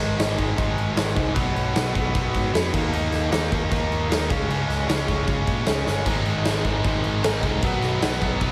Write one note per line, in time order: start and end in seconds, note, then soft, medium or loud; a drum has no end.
0.00 0.16 G#1 medium
0.00 0.17 G#2 medium
0.00 0.18 D#3 loud
0.00 0.18 G#3 loud
0.18 0.35 G#1 medium
0.18 0.37 G#2 medium
0.18 0.37 D#3 medium
0.18 0.37 G#3 medium
0.18 snare loud
0.18 crash medium
0.38 0.55 G#1 medium
0.38 0.55 G#2 medium
0.38 0.56 D#3 medium
0.38 0.57 G#3 loud
0.38 kick medium
0.38 crash medium
0.57 0.74 G#1 medium
0.57 0.95 G#2 loud
0.57 0.95 D#3 loud
0.57 0.96 G#3 medium
0.57 kick loud
0.57 crash medium
0.77 0.93 G#1 loud
0.77 crash medium
0.96 1.13 G#1 medium
0.96 1.14 G#2 medium
0.96 1.14 D#3 medium
0.96 1.15 G#3 medium
0.96 snare loud
0.96 crash medium
1.15 1.33 C2 medium
1.15 1.34 G#2 medium
1.15 1.34 D#3 medium
1.15 1.34 G#3 loud
1.15 kick medium
1.15 crash medium
1.34 1.53 B1 medium
1.34 1.73 B2 loud
1.34 1.73 F#3 loud
1.34 1.74 B3 loud
1.34 kick loud
1.34 crash medium
1.55 1.72 B1 medium
1.55 crash medium
1.74 1.92 B1 medium
1.74 1.92 B2 medium
1.74 1.93 F#3 medium
1.74 1.93 B3 medium
1.74 snare loud
1.74 crash medium
1.93 2.11 B1 medium
1.93 2.12 B2 medium
1.93 2.13 F#3 loud
1.93 2.13 B3 loud
1.93 kick medium
1.93 crash medium
2.14 2.31 B1 medium
2.14 2.51 B2 loud
2.14 2.52 F#3 loud
2.14 2.52 B3 loud
2.14 kick loud
2.14 crash medium
2.35 2.51 G#2 medium
2.35 kick medium
2.35 crash medium
2.52 2.70 F2 medium
2.52 2.71 B2 medium
2.52 2.72 F#3 medium
2.52 2.72 B3 medium
2.52 snare loud
2.52 crash medium
2.73 2.90 D#2 medium
2.73 2.91 D#3 loud
2.73 2.92 A#3 loud
2.73 2.93 D#4 loud
2.73 kick loud
2.73 crash loud
2.93 3.09 D#2 loud
2.93 3.30 D#3 loud
2.93 3.30 A#3 loud
2.93 3.31 D#4 loud
2.93 crash medium
3.12 3.29 D#2 medium
3.12 snare soft
3.12 crash medium
3.32 3.48 D#2 medium
3.32 3.51 D#3 medium
3.32 3.52 A#3 medium
3.32 3.52 D#4 loud
3.32 snare loud
3.32 crash medium
3.52 3.68 D#2 medium
3.52 3.70 D#3 medium
3.52 3.71 A#3 medium
3.52 3.71 D#4 medium
3.52 kick medium
3.52 crash medium
3.71 3.88 D#2 loud
3.71 4.08 D#3 loud
3.71 4.09 A#3 loud
3.71 4.09 D#4 loud
3.71 kick loud
3.71 crash medium
3.91 4.07 D#2 loud
3.91 crash medium
4.10 4.26 D#2 medium
4.10 4.28 D#3 medium
4.10 4.29 A#3 medium
4.10 4.29 D#4 loud
4.10 snare loud
4.10 crash medium
4.30 4.46 C#2 loud
4.30 4.49 C#3 loud
4.30 4.50 G#3 loud
4.30 4.49 C#4 loud
4.30 kick loud
4.30 crash medium
4.48 4.65 C#2 loud
4.48 4.86 C#3 loud
4.48 4.87 G#3 loud
4.48 4.87 C#4 loud
4.48 crash medium
4.68 4.85 C#2 loud
4.68 snare soft
4.68 crash medium
4.87 5.04 C#2 medium
4.87 5.06 C#3 medium
4.87 5.08 G#3 medium
4.87 5.07 C#4 loud
4.87 snare loud
4.87 crash medium
5.07 5.24 C#2 medium
5.07 5.25 C#3 medium
5.07 5.25 G#3 medium
5.07 5.26 C#4 medium
5.07 kick medium
5.07 crash medium
5.26 5.44 C#2 medium
5.26 5.65 C#3 medium
5.26 5.66 G#3 loud
5.26 5.66 C#4 loud
5.26 kick loud
5.26 crash medium
5.47 5.64 A#2 medium
5.47 kick medium
5.47 crash medium
5.66 5.83 C#2 medium
5.66 5.85 C#3 medium
5.66 5.86 G#3 medium
5.66 5.86 C#4 medium
5.66 snare loud
5.66 crash medium
5.86 6.03 G1 medium
5.86 6.05 C#3 medium
5.86 6.05 G#3 medium
5.86 6.05 C#4 loud
5.86 snare medium
6.06 6.22 G#1 medium
6.06 6.44 G#2 loud
6.06 6.44 D#3 loud
6.06 6.45 G#3 loud
6.06 6.45 C4 loud
6.06 6.47 D#4 loud
6.06 kick loud
6.06 crash loud
6.25 6.42 G#1 loud
6.25 crash medium
6.45 6.62 G#1 medium
6.45 6.64 G#2 medium
6.45 6.65 D#3 medium
6.45 6.65 G#3 medium
6.45 6.65 C4 medium
6.45 6.66 D#4 medium
6.45 snare loud
6.45 crash medium
6.65 6.81 G#1 medium
6.65 6.83 G#2 medium
6.65 6.84 D#3 medium
6.65 6.84 G#3 loud
6.65 6.85 C4 medium
6.65 6.86 D#4 loud
6.65 kick medium
6.65 crash medium
6.84 7.01 G#1 medium
6.84 7.23 G#2 medium
6.84 7.24 D#3 medium
6.84 7.24 G#3 loud
6.84 7.23 C4 loud
6.84 7.25 D#4 loud
6.84 kick loud
6.84 crash medium
7.04 7.21 G#1 medium
7.04 crash medium
7.24 7.40 G#1 medium
7.24 7.43 G#2 medium
7.24 7.43 D#3 medium
7.24 7.44 G#3 medium
7.24 7.43 C4 medium
7.24 7.44 D#4 medium
7.24 snare loud
7.24 crash medium
7.43 7.59 C2 medium
7.43 7.62 G#2 medium
7.43 7.62 D#3 loud
7.43 7.62 G#3 medium
7.43 7.62 C4 medium
7.43 7.65 D#4 medium
7.43 kick loud
7.43 crash medium
7.62 7.79 B1 loud
7.62 8.00 B2 loud
7.62 8.01 D#3 loud
7.62 8.01 F#3 loud
7.62 8.01 B3 loud
7.62 8.03 D#4 loud
7.62 kick loud
7.62 crash medium
7.82 7.98 B1 medium
7.82 snare soft
7.82 crash medium
8.01 8.18 B1 loud
8.01 8.19 B2 medium
8.01 8.20 D#3 medium
8.01 8.19 F#3 medium
8.01 8.20 B3 loud
8.01 8.22 D#4 medium
8.01 snare loud
8.01 crash medium
8.20 8.38 B1 medium
8.20 8.39 B2 medium
8.20 8.41 D#3 loud
8.20 8.39 F#3 medium
8.20 8.40 B3 medium
8.20 8.42 D#4 loud
8.20 kick medium
8.20 crash medium
8.41 8.52 B1 medium
8.41 8.52 B2 medium
8.41 8.52 D#3 loud
8.41 8.52 F#3 loud
8.41 8.52 B3 loud
8.41 8.52 D#4 loud
8.41 kick loud
8.41 crash medium